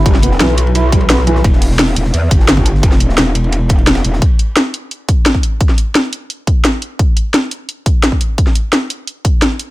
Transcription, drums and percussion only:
0.06 kick, closed hi-hat, ride
0.14 snare
0.22 closed hi-hat, ride
0.32 snare
0.40 snare, closed hi-hat, ride
0.50 ride
0.57 closed hi-hat, ride
0.67 ride
0.75 closed hi-hat, ride
0.92 kick, closed hi-hat, ride
1.01 ride
1.10 snare, closed hi-hat, ride
1.19 snare
1.27 closed hi-hat, ride
1.36 snare
1.44 kick, closed hi-hat, ride
1.53 snare
1.62 closed hi-hat, open hi-hat
1.71 snare
1.79 snare, closed hi-hat, ride
1.96 closed hi-hat, ride
2.04 snare
2.14 closed hi-hat, ride
2.31 kick, closed hi-hat, ride
2.40 snare
2.48 snare, closed hi-hat, ride
2.57 kick
2.65 closed hi-hat, ride
2.75 snare
2.83 kick, closed hi-hat, ride
2.92 snare
3.00 closed hi-hat, ride
3.09 snare
3.17 snare, closed hi-hat, ride
3.26 ride
3.35 closed hi-hat, ride
3.44 ride
3.52 closed hi-hat, ride
3.69 kick, closed hi-hat, ride
3.78 ride
3.87 snare, closed hi-hat, ride
3.95 snare, ride
4.04 closed hi-hat, ride
4.13 snare
4.22 kick, closed hi-hat
4.39 closed hi-hat
4.57 snare, closed hi-hat
4.74 closed hi-hat
4.91 closed hi-hat
5.09 kick, closed hi-hat
5.26 snare, closed hi-hat
5.35 kick
5.43 closed hi-hat
5.61 kick, closed hi-hat
5.69 snare
5.78 closed hi-hat
5.95 snare, closed hi-hat
6.13 closed hi-hat
6.30 closed hi-hat
6.47 kick, closed hi-hat
6.65 snare, closed hi-hat
6.82 closed hi-hat
6.99 kick, closed hi-hat
7.17 closed hi-hat
7.34 snare, closed hi-hat
7.51 closed hi-hat
7.69 closed hi-hat
7.86 kick, closed hi-hat
8.03 snare, closed hi-hat
8.12 kick
8.21 closed hi-hat
8.38 kick, closed hi-hat
8.47 snare
8.55 closed hi-hat
8.73 snare, closed hi-hat
8.90 closed hi-hat
9.07 closed hi-hat
9.25 kick, closed hi-hat
9.42 snare, closed hi-hat
9.59 closed hi-hat

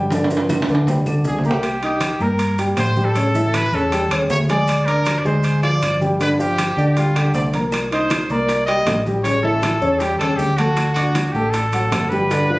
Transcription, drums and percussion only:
0.11 high bongo, high conga, high timbale, maracas
0.24 high timbale
0.30 high bongo, high conga, maracas
0.37 high timbale
0.49 high bongo, low conga, high timbale, claves, maracas
0.62 high timbale
0.68 high bongo, high conga, maracas
0.75 high timbale
0.87 high bongo, low conga, low timbale, maracas
1.06 low conga, claves, maracas
1.24 high bongo, low bongo, low conga, maracas
1.39 low timbale
1.44 high bongo, low conga, maracas
1.51 low timbale
1.63 high conga, high timbale, claves, maracas
1.82 high conga, high timbale
2.00 high conga, high timbale, claves, maracas
2.20 high conga, maracas
2.39 high conga, high timbale, maracas
2.58 high conga, high timbale, maracas
2.77 high conga, high timbale, low timbale, claves, maracas
2.96 high conga, maracas
3.15 high conga, high timbale, maracas
3.35 maracas
3.54 high conga, high timbale, claves, maracas
3.73 maracas
3.92 high conga, high timbale, maracas
4.11 high conga, high timbale, claves
4.30 high conga, low timbale, maracas
4.49 high conga, high timbale, maracas
4.67 high conga, high timbale, claves, maracas
4.88 high conga, high timbale
5.05 high conga, high timbale, claves, maracas
5.25 high conga, maracas
5.43 high conga, high timbale, maracas
5.63 high conga, high timbale
5.82 high conga, high timbale, claves, maracas
6.01 high conga, maracas
6.20 high conga, high timbale, maracas
6.40 high conga, maracas
6.58 high conga, high timbale, claves, maracas
6.78 maracas
6.97 high conga, high timbale, maracas
7.16 high conga, high timbale, claves
7.34 high conga, low timbale, maracas
7.53 high conga, high timbale, maracas
7.72 high bongo, high conga, high timbale, claves, maracas
7.91 high bongo, high conga, high timbale
8.10 high bongo, high conga, high timbale, claves, maracas
8.29 high bongo, high conga, maracas
8.49 high bongo, high conga, high timbale, maracas
8.68 high conga, high timbale
8.86 high bongo, low bongo, high conga, high timbale, low timbale, claves, maracas
9.06 high bongo, high conga, maracas
9.24 high bongo, high conga, high timbale, maracas
9.43 high bongo, high conga
9.62 high bongo, high conga, high timbale, claves, maracas
9.81 high bongo, maracas
10.00 high bongo, high conga, high timbale, maracas
10.20 high conga, high timbale, claves
10.39 high bongo, low bongo, high conga, maracas
10.58 high bongo, high conga, high timbale, maracas
10.77 high bongo, high timbale, claves, maracas
10.96 high bongo, high conga, high timbale, maracas
11.15 high bongo, high conga, high timbale, claves, maracas
11.35 high bongo, high conga, maracas
11.53 high bongo, high conga, high timbale, maracas
11.73 high conga, high timbale, maracas
11.92 high bongo, low bongo, high conga, high timbale, low timbale, claves, maracas
12.11 high bongo, high conga, maracas
12.30 high bongo, high conga, high timbale, maracas
12.49 high bongo, high conga

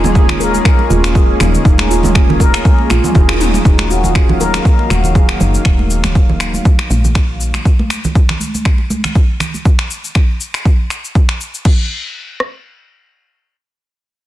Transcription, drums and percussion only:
0.04 mid tom, muted conga, high conga, low conga, shaker
0.15 kick, mid tom, shaker
0.29 finger snap, low conga
0.41 muted conga, shaker
0.54 high conga, shaker
0.65 finger snap, kick, shaker
0.79 muted conga
0.91 high conga, shaker
1.04 finger snap, shaker
1.15 kick, muted conga, shaker
1.40 finger snap, mid tom, shaker
1.55 muted conga, shaker
1.65 kick, shaker
1.78 finger snap, high conga
1.91 shaker
2.03 mid tom, muted conga, high conga, low conga, shaker
2.15 finger snap, kick, mid tom, shaker
2.30 low conga
2.40 kick, high conga, shaker
2.54 finger snap, high conga, shaker
2.65 kick, high conga, shaker
2.78 muted conga
2.90 finger snap, high conga, shaker
3.04 mid tom, low conga, shaker
3.15 kick, high tom, muted conga, shaker
3.29 finger snap, high tom
3.40 mid tom, shaker
3.54 mid tom, muted conga, shaker
3.65 kick, shaker
3.78 finger snap, high conga
3.91 shaker
4.03 muted conga, high conga, low conga, shaker
4.15 finger snap, kick, shaker
4.29 low conga
4.40 muted conga, high conga, shaker
4.54 finger snap, high conga, shaker
4.65 kick, shaker
4.79 muted conga
4.90 finger snap, high conga, shaker
5.04 low conga, shaker
5.15 kick, muted conga, shaker
5.29 finger snap
5.40 low conga, shaker
5.54 muted conga, shaker
5.65 finger snap, kick, shaker
5.79 high conga
5.91 shaker
6.04 finger snap, muted conga, high conga, low conga, shaker
6.15 kick, shaker
6.29 low conga
6.40 finger snap, shaker
6.54 high conga, shaker
6.65 kick, high conga, shaker
6.79 finger snap, muted conga
6.91 high conga, shaker
7.04 low conga, shaker
7.15 finger snap, kick, muted conga, shaker
7.41 shaker
7.54 finger snap, muted conga, shaker
7.65 kick, shaker
7.79 high conga
7.90 finger snap, shaker
8.04 muted conga, high conga, low conga, shaker
8.15 kick, shaker
8.29 finger snap, low conga
8.40 muted conga, high conga, shaker
8.55 high conga, shaker
8.65 finger snap, kick, shaker
8.78 muted conga
8.90 high conga, shaker
9.04 finger snap, low conga, shaker
9.15 kick, muted conga, shaker
9.40 finger snap, low conga, shaker
9.54 muted conga, shaker
9.65 kick, shaker
9.79 finger snap
9.91 shaker
10.05 shaker
10.15 finger snap, kick, shaker
10.41 shaker
10.54 finger snap, shaker
10.65 kick, shaker
10.90 finger snap, shaker
11.05 shaker
11.15 kick, shaker
11.29 finger snap
11.41 shaker
11.54 shaker
11.65 kick, crash
12.40 cross-stick

